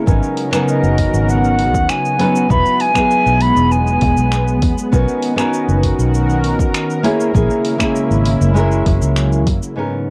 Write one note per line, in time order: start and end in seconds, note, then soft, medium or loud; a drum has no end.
0.00 2.46 C#3 medium
0.06 0.20 G#1 medium
0.06 0.49 F#3 medium
0.06 0.49 B3 medium
0.06 7.00 B3 medium
0.06 0.49 C#4 medium
0.06 0.50 D#4 medium
0.06 2.47 F#4 medium
0.06 2.48 A#4 medium
0.06 0.50 A#4 medium
0.06 kick loud
0.06 shaker medium
0.23 shaker soft
0.37 open hi-hat medium
0.51 2.15 F#3 medium
0.51 2.15 B3 medium
0.51 2.16 C#4 medium
0.51 2.16 D#4 medium
0.51 2.17 A#4 medium
0.51 finger snap medium
0.51 shaker medium
0.68 1.31 D#5 medium
0.68 shaker medium
0.83 1.07 F#1 medium
0.83 shaker soft
0.98 kick medium
0.98 open hi-hat medium
1.14 1.74 G#1 medium
1.14 shaker medium
1.29 1.91 F#5 medium
1.29 shaker medium
1.44 shaker soft
1.59 open hi-hat medium
1.74 1.86 D#2 medium
1.74 kick medium
1.74 shaker medium
1.89 2.52 G#5 loud
1.89 finger snap medium
1.89 shaker soft
2.05 shaker soft
2.18 2.46 F#3 medium
2.18 2.46 B3 medium
2.18 2.46 C#4 medium
2.18 2.46 D#4 medium
2.18 2.47 B4 loud
2.18 open hi-hat medium
2.36 shaker medium
2.49 2.62 E1 medium
2.49 2.91 F#3 medium
2.49 4.90 G#3 medium
2.49 2.92 B3 medium
2.49 2.92 D#4 medium
2.49 2.92 E4 medium
2.49 2.92 F#4 medium
2.49 2.82 B5 loud
2.49 kick loud
2.49 shaker medium
2.66 shaker soft
2.80 3.43 G#5 loud
2.80 open hi-hat medium
2.94 4.88 F#3 medium
2.94 4.88 B3 medium
2.94 4.89 D#4 medium
2.94 4.89 E4 medium
2.94 4.90 G#4 medium
2.94 finger snap medium
2.94 kick medium
2.94 shaker medium
3.11 shaker soft
3.26 3.50 B1 medium
3.26 shaker soft
3.40 3.73 B5 loud
3.40 open hi-hat medium
3.56 3.97 E1 medium
3.56 shaker medium
3.71 4.62 G#5 medium
3.71 shaker medium
3.87 shaker soft
4.01 4.14 E1 loud
4.01 kick medium
4.01 open hi-hat medium
4.17 4.62 B1 medium
4.17 shaker medium
4.32 finger snap medium
4.32 shaker soft
4.48 shaker soft
4.62 4.74 E2 medium
4.62 kick loud
4.62 open hi-hat medium
4.78 shaker medium
4.91 5.05 B1 medium
4.91 7.02 D#3 medium
4.91 5.34 B3 medium
4.91 5.34 C#4 medium
4.91 5.34 D#4 medium
4.91 7.02 F#4 medium
4.91 5.35 F#4 medium
4.91 8.52 A#4 medium
4.91 5.35 A#4 medium
4.91 kick loud
4.91 shaker medium
5.08 shaker soft
5.23 open hi-hat medium
5.36 7.00 B3 medium
5.36 7.00 C#4 medium
5.36 7.01 D#4 medium
5.36 7.01 F#4 medium
5.36 7.02 A#4 medium
5.36 finger snap medium
5.36 shaker medium
5.54 shaker medium
5.68 5.92 F#1 medium
5.68 shaker soft
5.83 kick medium
5.83 open hi-hat medium
5.99 6.59 B1 medium
5.99 shaker medium
6.14 shaker medium
6.30 shaker soft
6.44 open hi-hat medium
6.59 6.71 F#1 medium
6.59 kick medium
6.59 shaker medium
6.74 finger snap medium
6.74 shaker soft
6.90 shaker soft
7.03 8.54 C#3 medium
7.03 8.54 G#3 medium
7.03 7.31 A#3 medium
7.03 7.31 C#4 medium
7.03 9.74 E4 medium
7.03 7.31 E4 medium
7.03 7.31 G#4 medium
7.03 7.32 C#5 loud
7.03 open hi-hat medium
7.20 shaker medium
7.34 7.47 A#1 loud
7.34 7.76 A#3 medium
7.34 7.77 C#4 medium
7.34 7.77 E4 medium
7.34 7.77 G#4 medium
7.34 7.77 A#4 medium
7.34 kick loud
7.34 shaker soft
7.51 shaker soft
7.65 open hi-hat medium
7.78 8.53 A#3 medium
7.78 8.54 C#4 medium
7.78 8.54 E4 medium
7.78 8.54 G#4 medium
7.78 8.55 A#4 medium
7.78 finger snap medium
7.78 kick medium
7.78 shaker medium
7.96 shaker medium
8.11 8.35 G#1 medium
8.11 shaker soft
8.25 open hi-hat medium
8.41 8.81 F#1 medium
8.41 shaker medium
8.54 9.76 C#3 medium
8.54 9.76 F#3 medium
8.54 9.46 G#3 medium
8.54 9.76 A#3 medium
8.54 9.46 C#4 medium
8.54 9.47 E4 medium
8.54 9.47 F#4 medium
8.54 9.48 A#4 loud
8.54 shaker soft
8.72 shaker soft
8.86 8.98 F#1 loud
8.86 kick medium
8.86 open hi-hat medium
9.02 9.47 C#2 medium
9.02 shaker medium
9.16 finger snap medium
9.16 shaker soft
9.32 shaker soft
9.47 9.59 F#2 medium
9.47 kick loud
9.47 open hi-hat medium
9.63 shaker medium
9.75 10.10 G#2 medium
9.75 10.10 C#3 medium
9.75 10.10 G#3 medium
9.75 10.10 B3 medium
9.75 10.10 C#4 medium
9.75 10.10 D#4 medium
9.75 10.10 F#4 medium
9.75 10.10 A#4 medium